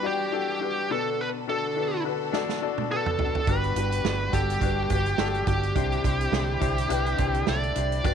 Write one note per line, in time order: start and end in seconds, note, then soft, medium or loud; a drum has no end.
0.00 0.92 G2 medium
0.00 0.88 G3 medium
0.00 0.88 B3 medium
0.00 0.03 D4 medium
0.00 0.28 D4 medium
0.00 0.03 F#4 medium
0.00 0.28 F#4 medium
0.00 0.04 G4 medium
0.00 0.88 G4 medium
0.00 0.28 G4 medium
0.00 0.62 B4 medium
0.00 0.04 D5 medium
0.04 0.92 G4 medium
0.04 0.28 D5 medium
0.32 0.57 D4 medium
0.32 0.57 F#4 medium
0.32 0.57 G4 medium
0.32 0.57 A4 medium
0.61 0.85 D4 medium
0.61 0.85 F#4 medium
0.61 0.86 G4 medium
0.61 0.86 B4 medium
0.89 1.72 B2 soft
0.89 3.45 D3 medium
0.89 5.72 B3 medium
0.89 1.38 D4 medium
0.89 1.38 F#4 medium
0.89 3.44 A4 medium
0.89 1.38 A4 medium
0.89 1.21 A4 medium
0.89 1.39 B4 medium
1.21 1.28 B4 medium
1.48 1.71 D4 medium
1.48 1.71 F#4 medium
1.48 1.72 A4 medium
1.48 2.02 A4 medium
1.48 1.72 D5 medium
1.76 2.00 D4 medium
1.76 2.00 F#4 medium
1.76 2.01 A4 medium
1.76 2.01 B4 medium
2.04 2.28 D4 medium
2.04 2.28 F#4 medium
2.04 2.29 A4 medium
2.04 2.29 B4 medium
2.33 2.57 D4 medium
2.33 2.57 F#4 medium
2.33 2.57 A4 medium
2.33 2.58 D5 loud
2.33 snare soft
2.49 snare soft
2.62 2.86 D4 medium
2.62 2.86 F#4 medium
2.62 2.86 A4 medium
2.62 2.87 D5 medium
2.78 high tom soft
2.91 3.14 D4 medium
2.91 3.15 F#4 medium
2.91 3.50 A4 medium
2.91 3.15 A4 medium
2.91 3.15 B4 medium
3.06 mid tom medium
3.19 3.43 D4 medium
3.19 3.43 F#4 medium
3.19 3.44 A4 soft
3.19 3.44 D5 medium
3.19 floor tom medium
3.35 floor tom medium
3.47 3.71 G1 medium
3.47 4.29 G2 soft
3.47 5.74 G3 medium
3.47 3.71 D4 medium
3.47 3.72 F#4 medium
3.47 5.74 G4 medium
3.47 3.72 G4 medium
3.47 4.36 B4 medium
3.47 3.72 B4 medium
3.47 kick medium
3.47 closed hi-hat medium
3.64 closed hi-hat soft
3.76 3.99 G1 medium
3.76 4.00 D4 medium
3.76 4.00 F#4 medium
3.76 4.01 G4 medium
3.76 4.01 B4 medium
3.76 closed hi-hat medium
3.92 closed hi-hat soft
4.04 4.28 G1 medium
4.04 4.28 D4 medium
4.04 4.28 F#4 medium
4.04 4.29 G4 soft
4.04 4.29 D5 medium
4.04 snare medium
4.32 4.56 G1 medium
4.32 4.56 D4 medium
4.32 4.57 F#4 medium
4.32 4.57 G4 medium
4.32 5.47 G4 medium
4.32 4.57 A4 medium
4.32 kick medium
4.32 closed hi-hat medium
4.50 closed hi-hat soft
4.61 4.85 G1 medium
4.61 4.85 D4 medium
4.61 4.86 F#4 medium
4.61 4.86 G4 medium
4.61 4.86 B4 medium
4.61 kick medium
4.61 closed hi-hat medium
4.90 5.14 G1 medium
4.90 5.14 D4 medium
4.90 5.14 F#4 medium
4.90 5.15 G4 medium
4.90 5.15 B4 medium
4.90 kick medium
4.90 closed hi-hat medium
5.06 closed hi-hat soft
5.18 5.42 G1 medium
5.18 5.43 D4 medium
5.18 5.43 F#4 medium
5.18 5.43 G4 medium
5.18 5.43 A4 medium
5.18 snare medium
5.34 closed hi-hat soft
5.47 5.70 G1 medium
5.47 5.71 D4 medium
5.47 5.71 F#4 medium
5.47 7.53 G4 medium
5.47 5.72 G4 soft
5.47 5.72 D5 medium
5.47 kick medium
5.47 closed hi-hat medium
5.63 closed hi-hat soft
5.75 5.99 C2 medium
5.75 6.58 C3 soft
5.75 8.02 D3 medium
5.75 8.02 C4 medium
5.75 6.00 D4 medium
5.75 6.00 E4 medium
5.75 8.02 E4 medium
5.75 6.00 G4 medium
5.75 6.01 C5 medium
5.75 kick medium
5.75 closed hi-hat medium
5.92 closed hi-hat soft
6.03 6.28 C2 medium
6.03 6.28 D4 medium
6.03 6.28 E4 medium
6.03 6.28 G4 medium
6.03 6.29 C5 medium
6.03 kick medium
6.03 closed hi-hat medium
6.21 closed hi-hat soft
6.31 6.56 C2 medium
6.31 6.56 D4 medium
6.31 6.56 E4 medium
6.31 6.57 G4 medium
6.31 6.57 C5 medium
6.31 snare loud
6.60 6.85 C2 medium
6.60 6.85 D4 medium
6.60 6.85 E4 medium
6.60 6.85 G4 medium
6.60 6.86 C5 medium
6.60 kick medium
6.60 closed hi-hat medium
6.78 closed hi-hat medium
6.89 7.13 C2 medium
6.89 7.13 D4 medium
6.89 7.14 E4 medium
6.89 7.14 G4 medium
6.89 7.14 B4 loud
6.89 closed hi-hat medium
7.06 closed hi-hat soft
7.17 7.42 C2 medium
7.17 7.42 D4 medium
7.17 7.42 E4 medium
7.17 7.42 G4 medium
7.17 7.43 C5 medium
7.17 kick medium
7.17 closed hi-hat medium
7.34 closed hi-hat soft
7.47 7.71 C2 medium
7.47 7.71 D4 medium
7.47 7.71 E4 medium
7.47 7.72 G4 medium
7.47 7.72 A4 medium
7.47 8.05 D5 medium
7.47 snare loud
7.63 closed hi-hat soft
7.75 7.99 C2 medium
7.75 8.00 D4 medium
7.75 8.00 E4 medium
7.75 8.00 G4 medium
7.75 8.01 C5 medium
7.75 closed hi-hat medium
7.92 closed hi-hat soft
8.04 8.14 G1 medium
8.04 8.14 G2 medium
8.04 8.14 G3 medium
8.04 8.14 B3 medium
8.04 8.14 D4 medium
8.04 8.14 F#4 medium
8.04 8.14 G4 medium
8.04 8.14 B4 medium
8.04 8.14 D5 medium
8.04 kick medium
8.04 closed hi-hat medium